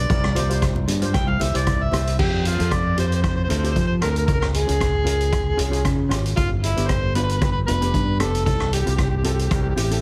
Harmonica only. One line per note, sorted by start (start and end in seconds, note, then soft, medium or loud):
0.00 0.72 D5 medium
1.14 1.30 G5 loud
1.29 1.43 F5 medium
1.42 1.58 E5 medium
1.57 1.84 D5 medium
1.83 2.18 E5 medium
2.19 2.47 G4 medium
2.46 2.74 F4 medium
2.72 2.98 D5 medium
3.00 3.06 C5 loud
3.07 3.13 C5 medium
3.15 3.21 C5 medium
3.22 3.28 C5 medium
3.28 3.35 C5 medium
3.36 3.42 C5 medium
3.44 3.49 C5 medium
3.50 3.57 C5 medium
3.58 3.65 C5 medium
3.65 3.71 C5 medium
3.71 3.79 C5 medium
3.80 3.87 C5 medium
3.87 3.94 C5 medium
4.02 4.09 A#4 medium
4.10 4.17 A#4 medium
4.18 4.24 A#4 medium
4.26 4.32 A#4 medium
4.33 4.40 A#4 medium
4.40 4.47 A#4 medium
4.55 6.08 G#4 medium
6.36 6.48 F4 loud
6.63 6.90 E4 medium
6.88 7.15 C5 loud
7.15 7.23 B4 loud
7.23 7.31 B4 medium
7.31 7.37 B4 medium
7.38 7.43 B4 medium
7.44 7.51 B4 medium
7.52 7.60 B4 medium
7.67 8.16 B4 medium
8.20 8.45 A4 medium
8.45 8.70 A4 medium
8.73 8.80 G4 medium
8.81 8.88 G4 medium
8.89 8.95 G4 medium
8.95 9.02 G4 soft
9.03 9.09 G4 medium
9.10 9.17 G4 medium
9.17 9.24 G4 soft
9.25 9.32 G4 soft
9.33 9.40 G4 medium
9.41 9.47 G4 soft
9.47 9.54 G4 soft
9.54 9.62 G4 soft
9.62 9.69 G4 medium
9.69 9.75 G4 soft
9.75 9.83 G4 medium
9.84 9.91 G4 soft
9.93 9.99 G4 medium